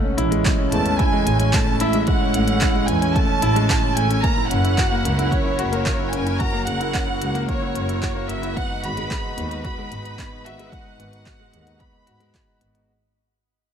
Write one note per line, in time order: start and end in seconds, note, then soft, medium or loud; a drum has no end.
0.00 4.20 G#3 medium
0.00 8.52 C#4 medium
0.00 0.17 C#4 medium
0.18 0.36 A1 loud
0.18 0.31 E4 loud
0.18 closed hi-hat medium
0.31 0.43 G#3 loud
0.31 closed hi-hat soft
0.45 0.58 G#3 medium
0.45 kick loud
0.45 clap loud
0.45 closed hi-hat soft
0.59 0.66 C#4 medium
0.71 0.89 E2 loud
0.71 0.85 A3 medium
0.71 0.98 A5 medium
0.71 closed hi-hat medium
0.85 0.99 C#4 medium
0.85 closed hi-hat soft
0.99 1.12 E4 loud
0.99 1.53 G#5 medium
0.99 kick loud
0.99 closed hi-hat soft
1.13 1.25 G#3 loud
1.26 1.44 A1 medium
1.26 1.39 G#3 medium
1.26 closed hi-hat medium
1.40 1.48 C#4 medium
1.40 closed hi-hat soft
1.53 1.66 A3 medium
1.53 1.81 A5 medium
1.53 kick loud
1.53 clap medium
1.53 closed hi-hat soft
1.67 1.80 C#4 medium
1.80 1.98 A1 medium
1.80 1.94 E4 loud
1.80 2.08 E5 medium
1.80 closed hi-hat medium
1.93 2.06 G#3 loud
1.93 closed hi-hat soft
2.07 2.20 G#3 medium
2.07 2.84 F#5 medium
2.07 kick loud
2.07 closed hi-hat soft
2.21 2.29 C#4 medium
2.34 2.51 A1 loud
2.34 2.47 A3 medium
2.34 closed hi-hat medium
2.48 2.61 C#4 medium
2.48 closed hi-hat soft
2.61 2.74 E4 loud
2.61 kick loud
2.61 clap medium
2.61 closed hi-hat soft
2.75 2.87 G#3 loud
2.88 3.06 E2 medium
2.88 3.01 G#3 medium
2.88 3.15 G#5 medium
2.88 closed hi-hat medium
3.01 3.10 C#4 medium
3.01 closed hi-hat soft
3.15 3.29 A3 medium
3.15 3.96 A5 loud
3.15 kick loud
3.15 closed hi-hat soft
3.29 3.42 C#4 medium
3.42 3.60 A1 medium
3.42 3.55 E4 loud
3.42 closed hi-hat medium
3.56 3.67 G#3 loud
3.56 closed hi-hat soft
3.69 3.82 G#3 medium
3.69 kick loud
3.69 clap loud
3.69 closed hi-hat soft
3.83 3.91 C#4 medium
3.96 4.14 A1 medium
3.96 4.10 A3 medium
3.96 4.23 G#5 loud
3.96 closed hi-hat medium
4.10 4.23 C#4 medium
4.10 closed hi-hat soft
4.22 8.52 F#3 medium
4.22 4.36 A#3 medium
4.22 6.38 E4 medium
4.22 8.52 A#4 medium
4.22 4.50 A#5 loud
4.22 kick loud
4.22 closed hi-hat soft
4.37 4.45 E4 medium
4.49 4.68 F#1 loud
4.49 4.64 C#4 medium
4.49 5.31 F#5 loud
4.49 closed hi-hat medium
4.64 4.77 E4 medium
4.64 closed hi-hat soft
4.78 4.91 F#4 loud
4.78 kick loud
4.78 clap medium
4.78 closed hi-hat soft
4.92 5.03 A#3 loud
5.04 5.22 C#2 loud
5.04 5.18 A#3 medium
5.04 closed hi-hat medium
5.18 5.26 E4 medium
5.18 closed hi-hat soft
5.30 5.45 C#4 medium
5.30 6.12 C#5 medium
5.30 kick loud
5.30 closed hi-hat soft
5.45 5.58 E4 medium
5.59 5.76 F#1 medium
5.59 5.72 F#4 loud
5.59 closed hi-hat medium
5.72 5.84 A#3 loud
5.72 closed hi-hat soft
5.85 5.99 A#3 medium
5.85 kick loud
5.85 clap medium
5.85 closed hi-hat soft
5.99 6.07 E4 medium
6.12 6.30 F#1 medium
6.12 6.26 C#4 medium
6.12 6.40 G#5 loud
6.12 closed hi-hat medium
6.26 6.39 E4 medium
6.26 closed hi-hat soft
6.39 6.52 F#4 loud
6.39 12.85 F#4 medium
6.39 6.66 A#5 loud
6.39 kick loud
6.39 closed hi-hat soft
6.53 6.65 A#3 loud
6.65 6.84 F#1 loud
6.65 6.80 A#3 medium
6.65 7.43 F#5 loud
6.65 closed hi-hat medium
6.80 6.88 E4 medium
6.80 closed hi-hat soft
6.94 7.07 C#4 medium
6.94 kick loud
6.94 clap medium
6.94 closed hi-hat soft
7.07 7.20 E4 medium
7.21 7.39 C#2 loud
7.21 7.34 F#4 loud
7.21 closed hi-hat medium
7.34 7.46 A#3 loud
7.34 closed hi-hat soft
7.47 7.61 A#3 medium
7.47 8.29 C#5 loud
7.47 kick loud
7.47 closed hi-hat soft
7.62 7.70 E4 medium
7.75 7.92 F#1 medium
7.75 7.88 C#4 medium
7.75 closed hi-hat medium
7.89 8.02 E4 medium
7.89 closed hi-hat soft
8.02 8.15 F#4 loud
8.02 kick loud
8.02 clap medium
8.02 closed hi-hat soft
8.15 8.27 A#3 loud
8.29 8.47 F#1 medium
8.29 8.42 A#3 medium
8.29 8.56 E5 loud
8.29 closed hi-hat medium
8.43 8.50 E4 medium
8.43 closed hi-hat soft
8.56 12.85 G#3 medium
8.56 8.69 B3 medium
8.56 12.85 D#4 medium
8.56 12.85 B4 medium
8.56 8.83 F#5 loud
8.56 kick loud
8.56 closed hi-hat soft
8.70 8.83 D#4 medium
8.82 9.01 G#1 loud
8.82 8.96 F#4 loud
8.82 9.60 B5 loud
8.82 closed hi-hat medium
8.97 9.09 G#3 loud
8.97 closed hi-hat soft
9.10 9.23 G#3 medium
9.10 kick loud
9.10 clap medium
9.10 closed hi-hat soft
9.23 9.31 D#4 medium
9.37 9.55 D#2 loud
9.37 9.50 B3 medium
9.37 closed hi-hat medium
9.50 9.64 D#4 medium
9.50 closed hi-hat soft
9.63 9.77 F#4 loud
9.63 10.41 B5 loud
9.63 kick loud
9.63 closed hi-hat soft
9.78 9.90 G#3 loud
9.91 10.09 G#1 medium
9.91 10.04 G#3 medium
9.91 closed hi-hat medium
10.05 10.13 D#4 medium
10.05 closed hi-hat soft
10.18 10.31 B3 medium
10.18 kick loud
10.18 clap medium
10.18 closed hi-hat soft
10.32 10.45 D#4 medium
10.44 10.62 G#1 medium
10.44 10.58 F#4 loud
10.44 10.72 E5 loud
10.44 closed hi-hat medium
10.59 10.71 G#3 loud
10.59 closed hi-hat soft
10.72 10.85 G#3 medium
10.72 11.80 F#5 loud
10.72 kick loud
10.72 closed hi-hat soft
10.85 10.93 D#4 medium
10.99 11.17 G#1 loud
10.99 11.12 B3 medium
10.99 closed hi-hat medium
11.13 11.26 D#4 medium
11.13 closed hi-hat soft
11.26 11.39 F#4 loud
11.26 kick loud
11.26 clap medium
11.26 closed hi-hat soft
11.40 11.52 G#3 loud
11.53 11.71 D#2 loud
11.53 11.66 G#3 medium
11.53 closed hi-hat medium
11.66 11.74 D#4 medium
11.66 closed hi-hat soft
11.80 11.93 B3 medium
11.80 12.61 B5 loud
11.80 kick loud
11.80 closed hi-hat soft
11.93 12.06 D#4 medium
12.06 12.25 G#2 medium
12.06 12.20 F#4 loud
12.06 closed hi-hat medium
12.20 12.32 G#3 loud
12.20 closed hi-hat soft
12.34 kick loud
12.34 clap loud
12.34 closed hi-hat soft
12.47 12.55 D#4 medium
12.61 12.79 G#1 medium
12.61 12.74 B3 medium
12.61 closed hi-hat medium
12.74 12.88 D#4 medium
12.74 closed hi-hat soft